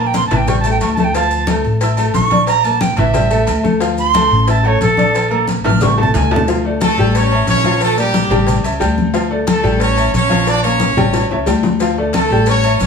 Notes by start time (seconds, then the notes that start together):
Already playing: A#1 A#3 A#4
0.00 A#5
0.07 G5
0.14 C6, cowbell, high conga, maracas
0.26 A5
0.31 A1 E3 E4 E5, cowbell, high conga, low conga, low agogo, maracas
0.37 G5
0.47 G3 G4 G5 C#6, cowbell, high conga, low conga, low agogo, maracas
0.60 A5, high conga, low agogo, maracas
0.65 A3 A4 A5
0.71 G5
0.81 D2 C#6, cowbell, high conga, low timbale, low agogo, maracas
0.93 A5, high conga, maracas
0.98 A3 A4 A5
1.04 G5
1.14 F3 F4 F5 A5, cowbell, high conga, low agogo, maracas
1.31 high conga, maracas
1.47 A3 A4 A5, cowbell, high conga, low agogo, maracas
1.64 A1, maracas
1.81 E4 E5 E6, cowbell, high conga, low agogo, maracas
1.97 A3 A4 A5, high conga, low agogo, maracas
2.14 A#1 C#6, cowbell, high conga, low timbale, maracas
2.30 D4 D5 D6, cowbell, high conga, low agogo, maracas
2.47 A#5, cowbell, high conga, low agogo, maracas
2.63 A#3 A#4 A5 A#5, high conga, low agogo, maracas
2.81 G5, cowbell, high conga, maracas
2.97 A1 E3 E4 E5, cowbell, high conga, low conga, low agogo, maracas
3.14 G3 G4 G5, cowbell, high conga, low conga, low agogo, maracas
3.30 A3 A4 A5, high conga, low agogo, maracas
3.47 D2, cowbell, high conga, low agogo, maracas
3.63 A3 A4 A5, high conga, maracas
3.80 F3 F4 F5, cowbell, high conga, low agogo, maracas
3.98 C6, high conga, maracas
4.14 A3 A4 A5, cowbell, high conga, low agogo, maracas
4.30 A1, maracas
4.47 E4 E5 A5 E6, cowbell, high conga, low agogo, maracas
4.63 A3 A4 C#5 A5, high conga, low agogo
4.81 A#1 A4, cowbell, high conga, maracas
4.97 D4 D5 D6, cowbell, high conga, low agogo, maracas
5.14 cowbell, high conga, low agogo, maracas
5.30 A#3 A#4 A#5, high conga, low agogo
5.47 cowbell, high conga, maracas
5.64 A1 E3 E4 E5 F6, cowbell, high bongo, low agogo, maracas
5.70 high conga
5.81 G3 G4 G5 C#6, cowbell, high bongo, low conga, high timbale, low agogo, maracas
5.97 A3 A4 A5, low bongo, high timbale, low agogo
6.03 low conga
6.14 D2 G#5, cowbell, low conga, low timbale, low agogo, maracas
6.31 A3 A4 A5, low bongo, low timbale, maracas
6.36 low conga
6.48 F3 F4 F5, cowbell, high conga, low agogo, maracas
6.65 A3 A4 D5, high conga
6.81 A3 A4, cowbell, high conga, low agogo, maracas
6.98 A1 G3 G4 G5, maracas
7.15 C#4 C#5, cowbell, high conga, low agogo, maracas
7.31 C#4 C#5 E5, high conga, low agogo
7.47 A#1 C#4 C#5, cowbell, high conga, low timbale, maracas
7.64 F3 F4 F5, cowbell, high conga, low agogo, maracas
7.81 A3 A4, cowbell, high conga, low agogo, maracas
7.97 G3 A#3 G4 A#4 D5, high conga, low agogo, maracas
8.14 cowbell, high conga, maracas
8.30 A1 G3 G4 G5, cowbell, high conga, low conga, low agogo, maracas
8.47 cowbell, high conga, low conga, low agogo, maracas
8.63 C#2 C#4 C#5 E5, high conga, low agogo, maracas
8.80 D2 G3 G4 G5, cowbell, high conga, low agogo, maracas
8.98 high conga, maracas
9.14 F3 F4 F5, cowbell, high conga, low agogo, maracas
9.31 A3 A4 D5, high conga
9.47 A3 A4, cowbell, high conga, low agogo, maracas
9.64 A1 G3 G4 G5, maracas
9.80 C#4 C#5, cowbell, high conga, low agogo, maracas
9.96 C#4 C#5 E5, high conga, low agogo, maracas
10.13 A#1 C#4 C#5, cowbell, high conga, maracas
10.30 F3 F4 F5, cowbell, high conga, low agogo, maracas
10.46 D4 D5, cowbell, high bongo, high conga, low agogo, maracas
10.62 A#3 C#4 A#4 C#5 F5, high conga, low agogo, maracas
10.80 cowbell, high bongo, high conga, maracas
10.97 A1 G3 G4 G5, cowbell, high conga, low conga, low agogo, maracas
11.13 cowbell, low bongo, high conga, low agogo, maracas
11.30 C#2 C#4 C#5 E5, low bongo, high conga, low agogo
11.46 D2 G3 G4 G5, cowbell, low bongo, high conga, low agogo, maracas
11.63 low bongo, high conga, maracas
11.80 F3 F4 F5, cowbell, high conga, low agogo, maracas
11.98 A3 A4 D5, high conga
12.13 A3 A4, cowbell, high conga, low agogo, maracas
12.30 A1 G3 G4 G5, maracas
12.46 C#4 C#5, cowbell, high conga, low agogo, maracas
12.63 C#4 C#5 E5, high conga, low agogo, maracas
12.80 A#1 C#4 C#5, cowbell, high conga, maracas